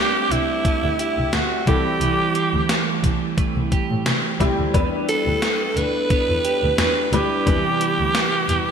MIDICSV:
0, 0, Header, 1, 6, 480
1, 0, Start_track
1, 0, Key_signature, 1, "minor"
1, 0, Tempo, 681818
1, 1418, Time_signature, 4, 2, 24, 8
1, 6134, End_track
2, 0, Start_track
2, 0, Title_t, "Alto saxophone"
2, 0, Program_c, 0, 65
2, 0, Note_on_c, 0, 67, 114
2, 225, Note_on_c, 0, 64, 96
2, 235, Note_off_c, 0, 67, 0
2, 701, Note_off_c, 0, 64, 0
2, 705, Note_on_c, 0, 64, 85
2, 944, Note_on_c, 0, 66, 91
2, 954, Note_off_c, 0, 64, 0
2, 1181, Note_off_c, 0, 66, 0
2, 1185, Note_on_c, 0, 67, 92
2, 2113, Note_off_c, 0, 67, 0
2, 3582, Note_on_c, 0, 69, 105
2, 4060, Note_on_c, 0, 71, 109
2, 4071, Note_off_c, 0, 69, 0
2, 4779, Note_off_c, 0, 71, 0
2, 4782, Note_on_c, 0, 71, 95
2, 5021, Note_on_c, 0, 67, 94
2, 5032, Note_off_c, 0, 71, 0
2, 6134, Note_off_c, 0, 67, 0
2, 6134, End_track
3, 0, Start_track
3, 0, Title_t, "Grand piano"
3, 0, Program_c, 1, 0
3, 0, Control_c, 1, 64, 127
3, 0, Note_on_c, 1, 55, 67
3, 0, Note_on_c, 1, 60, 60
3, 0, Note_on_c, 1, 62, 63
3, 0, Note_on_c, 1, 69, 70
3, 391, Note_off_c, 1, 55, 0
3, 392, Note_off_c, 1, 60, 0
3, 394, Note_off_c, 1, 62, 0
3, 395, Note_off_c, 1, 69, 0
3, 1176, Note_on_c, 1, 55, 68
3, 1179, Note_on_c, 1, 60, 65
3, 1182, Note_on_c, 1, 64, 66
3, 1184, Note_on_c, 1, 69, 73
3, 1186, Control_c, 1, 64, 0
3, 1290, Control_c, 1, 64, 127
3, 2071, Note_off_c, 1, 55, 0
3, 2073, Note_off_c, 1, 60, 0
3, 2074, Note_off_c, 1, 64, 0
3, 2075, Note_off_c, 1, 69, 0
3, 3095, Note_on_c, 1, 55, 73
3, 3099, Note_on_c, 1, 60, 71
3, 3101, Note_on_c, 1, 64, 69
3, 3105, Note_on_c, 1, 67, 85
3, 3320, Note_off_c, 1, 55, 0
3, 3322, Note_off_c, 1, 60, 0
3, 3323, Note_off_c, 1, 64, 0
3, 3325, Note_off_c, 1, 67, 0
3, 3334, Note_on_c, 1, 55, 80
3, 3336, Note_on_c, 1, 62, 70
3, 3341, Note_on_c, 1, 64, 72
3, 3342, Note_on_c, 1, 71, 85
3, 3347, Control_c, 1, 64, 0
3, 3451, Control_c, 1, 64, 127
3, 4230, Note_off_c, 1, 55, 0
3, 4231, Note_off_c, 1, 62, 0
3, 4233, Note_off_c, 1, 64, 0
3, 4234, Note_off_c, 1, 71, 0
3, 5017, Note_on_c, 1, 55, 65
3, 5020, Note_on_c, 1, 62, 60
3, 5022, Note_on_c, 1, 64, 59
3, 5024, Note_on_c, 1, 71, 74
3, 5241, Note_off_c, 1, 55, 0
3, 5242, Note_off_c, 1, 62, 0
3, 5244, Note_off_c, 1, 64, 0
3, 5245, Note_off_c, 1, 71, 0
3, 5254, Note_on_c, 1, 55, 69
3, 5257, Note_on_c, 1, 48, 60
3, 5261, Note_on_c, 1, 64, 61
3, 5263, Note_on_c, 1, 71, 71
3, 5267, Control_c, 1, 64, 0
3, 5394, Control_c, 1, 64, 127
3, 6134, Note_off_c, 1, 48, 0
3, 6134, Note_off_c, 1, 55, 0
3, 6134, Note_off_c, 1, 64, 0
3, 6134, Note_off_c, 1, 71, 0
3, 6134, End_track
4, 0, Start_track
4, 0, Title_t, "Clean electric guitar"
4, 0, Program_c, 2, 27
4, 0, Note_on_c, 2, 57, 60
4, 0, Note_on_c, 2, 60, 59
4, 215, Note_off_c, 2, 60, 0
4, 218, Note_on_c, 2, 60, 59
4, 456, Note_off_c, 2, 57, 0
4, 458, Note_on_c, 2, 57, 62
4, 697, Note_on_c, 2, 67, 60
4, 934, Note_off_c, 2, 60, 0
4, 937, Note_on_c, 2, 60, 57
4, 1178, Note_on_c, 2, 52, 72
4, 1415, Note_off_c, 2, 52, 0
4, 1417, Note_on_c, 2, 52, 72
4, 1654, Note_off_c, 2, 60, 0
4, 1657, Note_on_c, 2, 60, 55
4, 1897, Note_off_c, 2, 57, 0
4, 1900, Note_on_c, 2, 57, 59
4, 1921, Note_off_c, 2, 67, 0
4, 2131, Note_off_c, 2, 60, 0
4, 2140, Note_on_c, 2, 60, 57
4, 2370, Note_off_c, 2, 57, 0
4, 2378, Note_on_c, 2, 57, 65
4, 2621, Note_on_c, 2, 67, 61
4, 2853, Note_off_c, 2, 60, 0
4, 2861, Note_on_c, 2, 60, 56
4, 3091, Note_off_c, 2, 57, 0
4, 3099, Note_on_c, 2, 57, 51
4, 3337, Note_off_c, 2, 57, 0
4, 3340, Note_on_c, 2, 59, 74
4, 3392, Note_off_c, 2, 60, 0
4, 3582, Note_on_c, 2, 62, 56
4, 3603, Note_off_c, 2, 52, 0
4, 3816, Note_off_c, 2, 59, 0
4, 3818, Note_on_c, 2, 59, 58
4, 4047, Note_off_c, 2, 62, 0
4, 4056, Note_on_c, 2, 62, 58
4, 4294, Note_off_c, 2, 59, 0
4, 4297, Note_on_c, 2, 59, 68
4, 4533, Note_off_c, 2, 67, 0
4, 4536, Note_on_c, 2, 67, 62
4, 4768, Note_off_c, 2, 62, 0
4, 4777, Note_on_c, 2, 62, 57
4, 5014, Note_off_c, 2, 59, 0
4, 5017, Note_on_c, 2, 59, 54
4, 5259, Note_on_c, 2, 52, 76
4, 5310, Note_off_c, 2, 62, 0
4, 5498, Note_on_c, 2, 64, 59
4, 5735, Note_off_c, 2, 59, 0
4, 5738, Note_on_c, 2, 59, 58
4, 5971, Note_off_c, 2, 64, 0
4, 5979, Note_on_c, 2, 64, 60
4, 6134, Note_off_c, 2, 52, 0
4, 6134, Note_off_c, 2, 59, 0
4, 6134, Note_off_c, 2, 64, 0
4, 6134, Note_off_c, 2, 67, 0
4, 6134, End_track
5, 0, Start_track
5, 0, Title_t, "Double bass"
5, 0, Program_c, 3, 43
5, 216, Note_on_c, 3, 36, 81
5, 272, Note_off_c, 3, 36, 0
5, 587, Note_on_c, 3, 38, 79
5, 643, Note_off_c, 3, 38, 0
5, 828, Note_on_c, 3, 36, 75
5, 884, Note_off_c, 3, 36, 0
5, 936, Note_on_c, 3, 38, 88
5, 992, Note_off_c, 3, 38, 0
5, 1175, Note_on_c, 3, 36, 94
5, 1232, Note_off_c, 3, 36, 0
5, 1413, Note_on_c, 3, 36, 92
5, 1470, Note_off_c, 3, 36, 0
5, 1786, Note_on_c, 3, 38, 87
5, 1842, Note_off_c, 3, 38, 0
5, 2137, Note_on_c, 3, 36, 77
5, 2193, Note_off_c, 3, 36, 0
5, 2509, Note_on_c, 3, 36, 81
5, 2565, Note_off_c, 3, 36, 0
5, 2749, Note_on_c, 3, 45, 80
5, 2806, Note_off_c, 3, 45, 0
5, 2856, Note_on_c, 3, 48, 93
5, 2913, Note_off_c, 3, 48, 0
5, 3098, Note_on_c, 3, 36, 81
5, 3155, Note_off_c, 3, 36, 0
5, 3229, Note_on_c, 3, 38, 79
5, 3285, Note_off_c, 3, 38, 0
5, 3338, Note_on_c, 3, 40, 94
5, 3394, Note_off_c, 3, 40, 0
5, 3707, Note_on_c, 3, 38, 80
5, 3763, Note_off_c, 3, 38, 0
5, 4055, Note_on_c, 3, 38, 80
5, 4112, Note_off_c, 3, 38, 0
5, 4426, Note_on_c, 3, 40, 78
5, 4483, Note_off_c, 3, 40, 0
5, 4668, Note_on_c, 3, 38, 87
5, 4724, Note_off_c, 3, 38, 0
5, 4774, Note_on_c, 3, 40, 83
5, 4830, Note_off_c, 3, 40, 0
5, 5012, Note_on_c, 3, 38, 90
5, 5069, Note_off_c, 3, 38, 0
5, 5256, Note_on_c, 3, 40, 90
5, 5312, Note_off_c, 3, 40, 0
5, 5629, Note_on_c, 3, 38, 74
5, 5685, Note_off_c, 3, 38, 0
5, 5977, Note_on_c, 3, 40, 83
5, 6033, Note_off_c, 3, 40, 0
5, 6134, End_track
6, 0, Start_track
6, 0, Title_t, "Drums"
6, 222, Note_on_c, 9, 42, 66
6, 292, Note_off_c, 9, 42, 0
6, 457, Note_on_c, 9, 36, 90
6, 457, Note_on_c, 9, 42, 62
6, 527, Note_off_c, 9, 36, 0
6, 528, Note_off_c, 9, 42, 0
6, 699, Note_on_c, 9, 42, 67
6, 770, Note_off_c, 9, 42, 0
6, 936, Note_on_c, 9, 38, 101
6, 936, Note_on_c, 9, 42, 79
6, 1006, Note_off_c, 9, 38, 0
6, 1007, Note_off_c, 9, 42, 0
6, 1177, Note_on_c, 9, 36, 100
6, 1177, Note_on_c, 9, 42, 64
6, 1247, Note_off_c, 9, 36, 0
6, 1248, Note_off_c, 9, 42, 0
6, 1415, Note_on_c, 9, 42, 73
6, 1486, Note_off_c, 9, 42, 0
6, 1655, Note_on_c, 9, 42, 67
6, 1725, Note_off_c, 9, 42, 0
6, 1896, Note_on_c, 9, 38, 101
6, 1898, Note_on_c, 9, 42, 85
6, 1966, Note_off_c, 9, 38, 0
6, 1968, Note_off_c, 9, 42, 0
6, 2138, Note_on_c, 9, 36, 77
6, 2139, Note_on_c, 9, 42, 66
6, 2208, Note_off_c, 9, 36, 0
6, 2209, Note_off_c, 9, 42, 0
6, 2377, Note_on_c, 9, 36, 87
6, 2377, Note_on_c, 9, 42, 62
6, 2447, Note_off_c, 9, 36, 0
6, 2448, Note_off_c, 9, 42, 0
6, 2618, Note_on_c, 9, 36, 90
6, 2618, Note_on_c, 9, 42, 64
6, 2689, Note_off_c, 9, 36, 0
6, 2689, Note_off_c, 9, 42, 0
6, 2858, Note_on_c, 9, 38, 108
6, 2859, Note_on_c, 9, 42, 80
6, 2929, Note_off_c, 9, 38, 0
6, 2929, Note_off_c, 9, 42, 0
6, 3099, Note_on_c, 9, 36, 84
6, 3101, Note_on_c, 9, 42, 60
6, 3170, Note_off_c, 9, 36, 0
6, 3171, Note_off_c, 9, 42, 0
6, 3339, Note_on_c, 9, 36, 97
6, 3341, Note_on_c, 9, 42, 77
6, 3409, Note_off_c, 9, 36, 0
6, 3411, Note_off_c, 9, 42, 0
6, 3581, Note_on_c, 9, 42, 66
6, 3651, Note_off_c, 9, 42, 0
6, 3817, Note_on_c, 9, 38, 105
6, 3819, Note_on_c, 9, 42, 81
6, 3888, Note_off_c, 9, 38, 0
6, 3890, Note_off_c, 9, 42, 0
6, 4060, Note_on_c, 9, 42, 60
6, 4131, Note_off_c, 9, 42, 0
6, 4296, Note_on_c, 9, 42, 64
6, 4297, Note_on_c, 9, 36, 97
6, 4367, Note_off_c, 9, 36, 0
6, 4367, Note_off_c, 9, 42, 0
6, 4538, Note_on_c, 9, 42, 68
6, 4609, Note_off_c, 9, 42, 0
6, 4775, Note_on_c, 9, 38, 108
6, 4776, Note_on_c, 9, 42, 80
6, 4846, Note_off_c, 9, 38, 0
6, 4846, Note_off_c, 9, 42, 0
6, 5018, Note_on_c, 9, 42, 64
6, 5088, Note_off_c, 9, 42, 0
6, 5257, Note_on_c, 9, 36, 93
6, 5258, Note_on_c, 9, 42, 70
6, 5328, Note_off_c, 9, 36, 0
6, 5329, Note_off_c, 9, 42, 0
6, 5497, Note_on_c, 9, 42, 69
6, 5568, Note_off_c, 9, 42, 0
6, 5735, Note_on_c, 9, 38, 107
6, 5737, Note_on_c, 9, 42, 86
6, 5806, Note_off_c, 9, 38, 0
6, 5808, Note_off_c, 9, 42, 0
6, 5977, Note_on_c, 9, 42, 62
6, 6048, Note_off_c, 9, 42, 0
6, 6134, End_track
0, 0, End_of_file